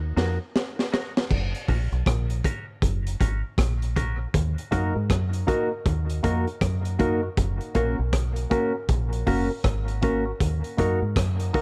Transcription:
Already playing: fingered electric bass D#2
0.17 fingered electric bass F2, clean electric guitar A#3 D#4 F#4 A#4, snare
0.56 snare
0.79 snare
0.92 clean electric guitar A#3 D#4 F#4 A#4, snare
1.17 snare
1.31 fingered electric bass F#1, kick, crash
1.55 closed hi-hat
1.67 fingered electric bass A#1, synth stab A#3 C#4 F#4 A#4, clean electric guitar A#3 C#4 F#4 A#4, kick, open hi-hat
1.92 fingered electric bass B1, closed hi-hat
2.06 fingered electric bass A#1, kick, cross-stick, closed hi-hat
2.30 closed hi-hat
2.43 synth stab A#3 C#4 F#4 A#4, clean electric guitar A#3 C#4 F#4 A#4, kick, closed hi-hat
2.82 fingered electric bass F#1, kick, closed hi-hat
3.07 closed hi-hat
3.19 fingered electric bass G#1, synth stab A#3 C#4 F#4 A#4, clean electric guitar A#3 C#4 F#4 A#4, kick, closed hi-hat
3.58 fingered electric bass A#1, kick, cross-stick, closed hi-hat
3.82 closed hi-hat
3.95 synth stab A#3 C#4 F#4 A#4, clean electric guitar A#3 C#4 F#4 A#4, kick, closed hi-hat
4.19 synth stab F#4 A#4
4.34 fingered electric bass D#2, kick, closed hi-hat
4.58 closed hi-hat
4.71 fingered electric bass F#2, synth stab A#3 D#4 F#4 A#4, clean electric guitar A#3 D#4 F#4 A#4, kick, cross-stick, closed hi-hat
4.96 fingered electric bass G#2
5.10 fingered electric bass F#2, kick, cross-stick, closed hi-hat
5.33 closed hi-hat
5.47 synth stab A#3 D#4 F#4 A#4, clean electric guitar A#3 D#4 F#4 A#4, kick, closed hi-hat
5.86 fingered electric bass D#2, kick, closed hi-hat
6.10 closed hi-hat
6.23 fingered electric bass F2, synth stab A#3 D#4 F#4 A#4, clean electric guitar A#3 D#4 F#4 A#4, kick, closed hi-hat
6.47 closed hi-hat
6.61 fingered electric bass F#2, kick, cross-stick, closed hi-hat
6.85 closed hi-hat
6.99 synth stab A#3 D#4 F#4 A#4, clean electric guitar A#3 D#4 F#4 A#4, kick, closed hi-hat
7.23 synth stab F#4 A#4
7.37 fingered electric bass F#1, kick, closed hi-hat
7.61 closed hi-hat
7.75 fingered electric bass A#1, synth stab A#3 C#4 F#4 A#4, clean electric guitar A#3 C#4 F#4 A#4, kick, cross-stick, closed hi-hat
7.99 fingered electric bass B1
8.13 kick, cross-stick, closed hi-hat
8.36 closed hi-hat
8.50 synth stab A#3 C#4 F#4 A#4, clean electric guitar A#3 C#4 F#4 A#4, kick, closed hi-hat
8.89 fingered electric bass A#1, kick, closed hi-hat
9.13 closed hi-hat
9.27 fingered electric bass F#1, synth stab A#3 C#4 F#4 A#4, clean electric guitar A#3 C#4 F#4 A#4, kick, open hi-hat
9.64 fingered electric bass G#1, kick, cross-stick, closed hi-hat
9.88 closed hi-hat
10.02 synth stab A#3 C#4 F#4 A#4, clean electric guitar A#3 C#4 F#4 A#4, kick, closed hi-hat
10.26 synth stab F#4 A#4
10.40 fingered electric bass D#2, kick, closed hi-hat
10.64 closed hi-hat
10.77 fingered electric bass F#2, synth stab A#3 D#4 F#4 A#4, clean electric guitar A#3 D#4 F#4 A#4, kick, cross-stick, closed hi-hat
11.02 fingered electric bass G#2
11.16 fingered electric bass F#2, kick, cross-stick, closed hi-hat
11.40 closed hi-hat
11.53 synth stab A#3 D#4 F#4 A#4, clean electric guitar A#3 D#4 F#4 A#4, kick, open hi-hat

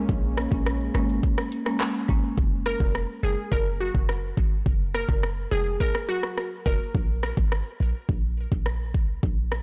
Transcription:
Already playing: analog synth pad G#3 A#3 C#4
0.09 808-style bass A#1, kick, shaker
0.23 shaker
0.37 marimba A#3 C#4, cross-stick, closed hi-hat, shaker
0.51 808-style bass A#1, marimba G#3 A#3 C#4, kick, shaker
0.66 cross-stick, shaker
0.80 shaker
0.94 808-style bass G#1, marimba G#3 A#3 C#4, cross-stick, closed hi-hat, shaker
1.09 shaker
1.23 kick, shaker
1.38 cross-stick, shaker
1.51 marimba A#3 C#4, closed hi-hat, shaker
1.65 marimba G#3 A#3 C#4, cross-stick, shaker
1.80 cross-stick, clap, shaker
1.95 shaker
2.08 808-style bass G#1, marimba G#3 A#3 C#4, kick, closed hi-hat, shaker
2.23 shaker
2.38 808-style bass F#1, kick
2.66 synth pluck A#4, cross-stick
2.80 808-style bass F1, kick
2.95 cross-stick
3.23 808-style bass F#1, synth pluck G#4
3.52 808-style bass F#1, synth pluck A#4, kick
3.80 synth pluck F#4
3.95 808-style bass F#1, kick
4.09 cross-stick
4.37 808-style bass G#1, kick
4.66 808-style bass F#1, kick
4.95 synth pluck A#4, cross-stick
5.09 808-style bass F#1, kick
5.23 cross-stick
5.51 808-style bass F1, synth pluck G#4
5.80 synth pluck A#4, kick
5.95 cross-stick
6.09 synth pluck F#4
6.23 cross-stick
6.38 cross-stick
6.66 808-style bass F1, synth pluck A#4, kick
6.95 808-style bass A#1, kick
7.23 cross-stick
7.37 808-style bass G#1, kick
7.52 cross-stick
7.80 808-style bass A#1
8.09 808-style bass A#1, kick
8.52 808-style bass A#1, kick
8.66 cross-stick
8.94 808-style bass C2, kick
9.23 808-style bass A#1, kick
9.52 cross-stick

